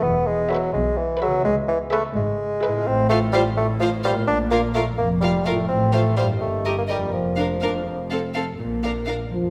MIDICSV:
0, 0, Header, 1, 9, 480
1, 0, Start_track
1, 0, Key_signature, -2, "major"
1, 0, Tempo, 470588
1, 40, Time_signature, 6, 3, 24, 8
1, 5320, Tempo, 481155
1, 9594, End_track
2, 0, Start_track
2, 0, Title_t, "Violin section"
2, 0, Program_c, 0, 48
2, 520, Note_on_c, 0, 76, 62
2, 699, Note_off_c, 0, 76, 0
2, 1239, Note_on_c, 0, 76, 57
2, 1419, Note_off_c, 0, 76, 0
2, 1963, Note_on_c, 0, 76, 58
2, 2141, Note_off_c, 0, 76, 0
2, 2676, Note_on_c, 0, 76, 53
2, 2855, Note_off_c, 0, 76, 0
2, 3162, Note_on_c, 0, 77, 46
2, 3238, Note_off_c, 0, 77, 0
2, 3399, Note_on_c, 0, 77, 49
2, 3475, Note_off_c, 0, 77, 0
2, 3885, Note_on_c, 0, 77, 46
2, 3961, Note_off_c, 0, 77, 0
2, 4120, Note_on_c, 0, 77, 49
2, 4196, Note_off_c, 0, 77, 0
2, 4600, Note_on_c, 0, 77, 48
2, 4677, Note_off_c, 0, 77, 0
2, 4839, Note_on_c, 0, 77, 43
2, 4916, Note_off_c, 0, 77, 0
2, 5325, Note_on_c, 0, 77, 44
2, 5400, Note_off_c, 0, 77, 0
2, 5564, Note_on_c, 0, 77, 40
2, 5639, Note_off_c, 0, 77, 0
2, 6031, Note_on_c, 0, 77, 39
2, 6108, Note_off_c, 0, 77, 0
2, 6270, Note_on_c, 0, 77, 37
2, 6347, Note_off_c, 0, 77, 0
2, 6754, Note_on_c, 0, 75, 35
2, 6831, Note_off_c, 0, 75, 0
2, 6988, Note_on_c, 0, 75, 39
2, 7067, Note_off_c, 0, 75, 0
2, 7463, Note_on_c, 0, 77, 36
2, 7543, Note_off_c, 0, 77, 0
2, 7712, Note_on_c, 0, 77, 34
2, 7791, Note_off_c, 0, 77, 0
2, 8207, Note_on_c, 0, 77, 31
2, 8284, Note_off_c, 0, 77, 0
2, 8438, Note_on_c, 0, 77, 35
2, 8517, Note_off_c, 0, 77, 0
2, 8925, Note_on_c, 0, 77, 40
2, 9001, Note_off_c, 0, 77, 0
2, 9150, Note_on_c, 0, 77, 37
2, 9229, Note_off_c, 0, 77, 0
2, 9594, End_track
3, 0, Start_track
3, 0, Title_t, "Violin section"
3, 0, Program_c, 1, 48
3, 521, Note_on_c, 1, 71, 62
3, 700, Note_off_c, 1, 71, 0
3, 1239, Note_on_c, 1, 71, 51
3, 1419, Note_off_c, 1, 71, 0
3, 1958, Note_on_c, 1, 71, 60
3, 2138, Note_off_c, 1, 71, 0
3, 2690, Note_on_c, 1, 71, 59
3, 2863, Note_off_c, 1, 71, 0
3, 3167, Note_on_c, 1, 72, 45
3, 3242, Note_off_c, 1, 72, 0
3, 3404, Note_on_c, 1, 72, 49
3, 3479, Note_off_c, 1, 72, 0
3, 3892, Note_on_c, 1, 72, 49
3, 3966, Note_off_c, 1, 72, 0
3, 4135, Note_on_c, 1, 72, 50
3, 4209, Note_off_c, 1, 72, 0
3, 4614, Note_on_c, 1, 70, 41
3, 4688, Note_off_c, 1, 70, 0
3, 4852, Note_on_c, 1, 70, 43
3, 4926, Note_off_c, 1, 70, 0
3, 5334, Note_on_c, 1, 70, 36
3, 5407, Note_off_c, 1, 70, 0
3, 5569, Note_on_c, 1, 70, 41
3, 5643, Note_off_c, 1, 70, 0
3, 6035, Note_on_c, 1, 72, 39
3, 6111, Note_off_c, 1, 72, 0
3, 6279, Note_on_c, 1, 72, 40
3, 6355, Note_off_c, 1, 72, 0
3, 6764, Note_on_c, 1, 70, 34
3, 6840, Note_off_c, 1, 70, 0
3, 7002, Note_on_c, 1, 70, 34
3, 7078, Note_off_c, 1, 70, 0
3, 7492, Note_on_c, 1, 70, 33
3, 7567, Note_off_c, 1, 70, 0
3, 7733, Note_on_c, 1, 70, 33
3, 7808, Note_off_c, 1, 70, 0
3, 8213, Note_on_c, 1, 69, 31
3, 8289, Note_off_c, 1, 69, 0
3, 8462, Note_on_c, 1, 69, 35
3, 8536, Note_off_c, 1, 69, 0
3, 8941, Note_on_c, 1, 70, 33
3, 9014, Note_off_c, 1, 70, 0
3, 9178, Note_on_c, 1, 70, 36
3, 9252, Note_off_c, 1, 70, 0
3, 9594, End_track
4, 0, Start_track
4, 0, Title_t, "Viola section"
4, 0, Program_c, 2, 48
4, 507, Note_on_c, 2, 68, 53
4, 692, Note_off_c, 2, 68, 0
4, 1230, Note_on_c, 2, 68, 61
4, 1415, Note_off_c, 2, 68, 0
4, 1960, Note_on_c, 2, 68, 59
4, 2139, Note_off_c, 2, 68, 0
4, 2672, Note_on_c, 2, 68, 63
4, 2853, Note_off_c, 2, 68, 0
4, 3162, Note_on_c, 2, 65, 47
4, 3238, Note_off_c, 2, 65, 0
4, 3405, Note_on_c, 2, 65, 55
4, 3480, Note_off_c, 2, 65, 0
4, 3877, Note_on_c, 2, 65, 47
4, 3954, Note_off_c, 2, 65, 0
4, 4128, Note_on_c, 2, 65, 43
4, 4203, Note_off_c, 2, 65, 0
4, 4601, Note_on_c, 2, 65, 47
4, 4678, Note_off_c, 2, 65, 0
4, 4840, Note_on_c, 2, 65, 46
4, 4917, Note_off_c, 2, 65, 0
4, 5330, Note_on_c, 2, 65, 42
4, 5404, Note_off_c, 2, 65, 0
4, 5568, Note_on_c, 2, 65, 41
4, 5642, Note_off_c, 2, 65, 0
4, 6046, Note_on_c, 2, 65, 44
4, 6120, Note_off_c, 2, 65, 0
4, 6283, Note_on_c, 2, 65, 41
4, 6358, Note_off_c, 2, 65, 0
4, 6769, Note_on_c, 2, 67, 37
4, 6843, Note_off_c, 2, 67, 0
4, 6994, Note_on_c, 2, 67, 32
4, 7072, Note_off_c, 2, 67, 0
4, 7479, Note_on_c, 2, 62, 33
4, 7557, Note_off_c, 2, 62, 0
4, 7725, Note_on_c, 2, 62, 35
4, 7802, Note_off_c, 2, 62, 0
4, 8211, Note_on_c, 2, 60, 39
4, 8287, Note_off_c, 2, 60, 0
4, 8449, Note_on_c, 2, 60, 34
4, 8526, Note_off_c, 2, 60, 0
4, 8930, Note_on_c, 2, 62, 35
4, 9006, Note_off_c, 2, 62, 0
4, 9167, Note_on_c, 2, 62, 38
4, 9243, Note_off_c, 2, 62, 0
4, 9594, End_track
5, 0, Start_track
5, 0, Title_t, "Harp"
5, 0, Program_c, 3, 46
5, 0, Note_on_c, 3, 52, 53
5, 0, Note_on_c, 3, 59, 40
5, 0, Note_on_c, 3, 68, 41
5, 0, Note_on_c, 3, 71, 42
5, 1294, Note_on_c, 3, 49, 53
5, 1326, Note_off_c, 3, 59, 0
5, 1339, Note_on_c, 3, 59, 47
5, 1372, Note_off_c, 3, 68, 0
5, 1384, Note_on_c, 3, 68, 40
5, 1412, Note_off_c, 3, 52, 0
5, 1431, Note_on_c, 3, 76, 44
5, 2732, Note_on_c, 3, 45, 54
5, 2778, Note_on_c, 3, 60, 43
5, 2822, Note_on_c, 3, 65, 46
5, 2843, Note_off_c, 3, 49, 0
5, 2865, Note_off_c, 3, 59, 0
5, 2872, Note_on_c, 3, 77, 45
5, 2888, Note_off_c, 3, 68, 0
5, 2912, Note_off_c, 3, 76, 0
5, 2916, Note_off_c, 3, 71, 0
5, 4176, Note_on_c, 3, 46, 53
5, 4222, Note_on_c, 3, 58, 42
5, 4258, Note_off_c, 3, 65, 0
5, 4270, Note_on_c, 3, 65, 43
5, 4286, Note_off_c, 3, 45, 0
5, 4304, Note_off_c, 3, 77, 0
5, 4308, Note_off_c, 3, 60, 0
5, 4317, Note_on_c, 3, 77, 43
5, 5614, Note_on_c, 3, 45, 40
5, 5661, Note_on_c, 3, 60, 35
5, 5694, Note_off_c, 3, 65, 0
5, 5706, Note_on_c, 3, 65, 34
5, 5725, Note_off_c, 3, 46, 0
5, 5735, Note_off_c, 3, 77, 0
5, 5747, Note_off_c, 3, 58, 0
5, 5747, Note_on_c, 3, 77, 34
5, 6338, Note_on_c, 3, 43, 39
5, 6380, Note_on_c, 3, 58, 34
5, 6426, Note_on_c, 3, 67, 31
5, 6442, Note_off_c, 3, 45, 0
5, 6466, Note_off_c, 3, 60, 0
5, 6471, Note_on_c, 3, 75, 36
5, 6488, Note_off_c, 3, 65, 0
5, 6509, Note_off_c, 3, 77, 0
5, 7062, Note_on_c, 3, 41, 40
5, 7093, Note_off_c, 3, 58, 0
5, 7105, Note_on_c, 3, 58, 30
5, 7152, Note_on_c, 3, 70, 30
5, 7170, Note_off_c, 3, 43, 0
5, 7197, Note_on_c, 3, 74, 30
5, 7214, Note_off_c, 3, 67, 0
5, 7237, Note_off_c, 3, 75, 0
5, 7774, Note_off_c, 3, 41, 0
5, 7786, Note_on_c, 3, 41, 39
5, 7827, Note_on_c, 3, 60, 30
5, 7871, Note_on_c, 3, 69, 30
5, 7916, Note_off_c, 3, 58, 0
5, 7917, Note_on_c, 3, 72, 27
5, 7939, Note_off_c, 3, 70, 0
5, 7961, Note_off_c, 3, 74, 0
5, 8618, Note_off_c, 3, 41, 0
5, 8639, Note_off_c, 3, 60, 0
5, 8661, Note_off_c, 3, 69, 0
5, 8683, Note_on_c, 3, 46, 40
5, 8684, Note_off_c, 3, 72, 0
5, 8921, Note_on_c, 3, 70, 34
5, 9160, Note_on_c, 3, 62, 32
5, 9399, Note_on_c, 3, 53, 34
5, 9594, Note_off_c, 3, 46, 0
5, 9594, Note_off_c, 3, 53, 0
5, 9594, Note_off_c, 3, 62, 0
5, 9594, Note_off_c, 3, 70, 0
5, 9594, End_track
6, 0, Start_track
6, 0, Title_t, "Bassoon"
6, 0, Program_c, 4, 70
6, 28, Note_on_c, 4, 59, 75
6, 270, Note_on_c, 4, 56, 76
6, 285, Note_off_c, 4, 59, 0
6, 518, Note_on_c, 4, 54, 72
6, 533, Note_off_c, 4, 56, 0
6, 743, Note_off_c, 4, 54, 0
6, 749, Note_on_c, 4, 56, 78
6, 995, Note_on_c, 4, 52, 67
6, 1010, Note_off_c, 4, 56, 0
6, 1235, Note_off_c, 4, 52, 0
6, 1241, Note_on_c, 4, 54, 81
6, 1468, Note_off_c, 4, 54, 0
6, 1474, Note_on_c, 4, 56, 82
6, 1584, Note_off_c, 4, 56, 0
6, 1714, Note_on_c, 4, 52, 77
6, 1824, Note_off_c, 4, 52, 0
6, 1960, Note_on_c, 4, 57, 72
6, 2069, Note_off_c, 4, 57, 0
6, 2198, Note_on_c, 4, 56, 69
6, 2926, Note_on_c, 4, 60, 87
6, 2941, Note_off_c, 4, 56, 0
6, 3148, Note_off_c, 4, 60, 0
6, 3154, Note_on_c, 4, 57, 78
6, 3262, Note_off_c, 4, 57, 0
6, 3396, Note_on_c, 4, 55, 79
6, 3505, Note_off_c, 4, 55, 0
6, 3641, Note_on_c, 4, 57, 72
6, 3749, Note_off_c, 4, 57, 0
6, 3878, Note_on_c, 4, 53, 67
6, 3986, Note_off_c, 4, 53, 0
6, 4125, Note_on_c, 4, 55, 71
6, 4231, Note_off_c, 4, 55, 0
6, 4361, Note_on_c, 4, 62, 87
6, 4469, Note_off_c, 4, 62, 0
6, 4600, Note_on_c, 4, 58, 78
6, 4708, Note_off_c, 4, 58, 0
6, 4844, Note_on_c, 4, 57, 61
6, 4951, Note_off_c, 4, 57, 0
6, 5079, Note_on_c, 4, 58, 68
6, 5187, Note_off_c, 4, 58, 0
6, 5310, Note_on_c, 4, 55, 67
6, 5554, Note_on_c, 4, 57, 57
6, 5569, Note_off_c, 4, 55, 0
6, 5781, Note_off_c, 4, 57, 0
6, 5786, Note_on_c, 4, 60, 73
6, 6030, Note_on_c, 4, 57, 65
6, 6045, Note_off_c, 4, 60, 0
6, 6265, Note_off_c, 4, 57, 0
6, 6271, Note_on_c, 4, 55, 55
6, 6380, Note_off_c, 4, 55, 0
6, 6511, Note_on_c, 4, 57, 54
6, 6867, Note_off_c, 4, 57, 0
6, 6883, Note_on_c, 4, 58, 57
6, 6935, Note_off_c, 4, 58, 0
6, 6999, Note_on_c, 4, 55, 55
6, 7226, Note_off_c, 4, 55, 0
6, 7232, Note_on_c, 4, 53, 48
6, 8420, Note_off_c, 4, 53, 0
6, 9594, End_track
7, 0, Start_track
7, 0, Title_t, "French horn section"
7, 0, Program_c, 5, 60
7, 9411, Note_on_c, 5, 53, 54
7, 9594, Note_off_c, 5, 53, 0
7, 9594, End_track
8, 0, Start_track
8, 0, Title_t, "Cello section"
8, 0, Program_c, 6, 48
8, 33, Note_on_c, 6, 40, 60
8, 609, Note_off_c, 6, 40, 0
8, 751, Note_on_c, 6, 47, 67
8, 1329, Note_off_c, 6, 47, 0
8, 1476, Note_on_c, 6, 37, 70
8, 2051, Note_off_c, 6, 37, 0
8, 2195, Note_on_c, 6, 44, 68
8, 2766, Note_off_c, 6, 44, 0
8, 2914, Note_on_c, 6, 45, 63
8, 3515, Note_off_c, 6, 45, 0
8, 3631, Note_on_c, 6, 45, 69
8, 4235, Note_off_c, 6, 45, 0
8, 4358, Note_on_c, 6, 46, 64
8, 4959, Note_off_c, 6, 46, 0
8, 5076, Note_on_c, 6, 41, 60
8, 5674, Note_off_c, 6, 41, 0
8, 5795, Note_on_c, 6, 45, 54
8, 6393, Note_off_c, 6, 45, 0
8, 6513, Note_on_c, 6, 43, 51
8, 7117, Note_off_c, 6, 43, 0
8, 7236, Note_on_c, 6, 41, 45
8, 7841, Note_off_c, 6, 41, 0
8, 7958, Note_on_c, 6, 41, 41
8, 8565, Note_off_c, 6, 41, 0
8, 8681, Note_on_c, 6, 46, 45
8, 9280, Note_off_c, 6, 46, 0
8, 9396, Note_on_c, 6, 41, 43
8, 9594, Note_off_c, 6, 41, 0
8, 9594, End_track
9, 0, Start_track
9, 0, Title_t, "Double bass section"
9, 0, Program_c, 7, 48
9, 40, Note_on_c, 7, 28, 60
9, 612, Note_off_c, 7, 28, 0
9, 765, Note_on_c, 7, 35, 66
9, 1335, Note_off_c, 7, 35, 0
9, 1485, Note_on_c, 7, 37, 71
9, 2056, Note_off_c, 7, 37, 0
9, 2206, Note_on_c, 7, 32, 71
9, 2772, Note_off_c, 7, 32, 0
9, 2921, Note_on_c, 7, 33, 71
9, 3519, Note_off_c, 7, 33, 0
9, 3650, Note_on_c, 7, 33, 56
9, 4245, Note_off_c, 7, 33, 0
9, 4361, Note_on_c, 7, 34, 55
9, 4961, Note_off_c, 7, 34, 0
9, 5090, Note_on_c, 7, 29, 55
9, 5681, Note_off_c, 7, 29, 0
9, 5809, Note_on_c, 7, 33, 54
9, 6400, Note_off_c, 7, 33, 0
9, 6516, Note_on_c, 7, 31, 46
9, 7119, Note_off_c, 7, 31, 0
9, 7240, Note_on_c, 7, 29, 45
9, 7843, Note_off_c, 7, 29, 0
9, 7972, Note_on_c, 7, 29, 42
9, 8572, Note_off_c, 7, 29, 0
9, 8692, Note_on_c, 7, 34, 46
9, 9286, Note_off_c, 7, 34, 0
9, 9407, Note_on_c, 7, 29, 44
9, 9594, Note_off_c, 7, 29, 0
9, 9594, End_track
0, 0, End_of_file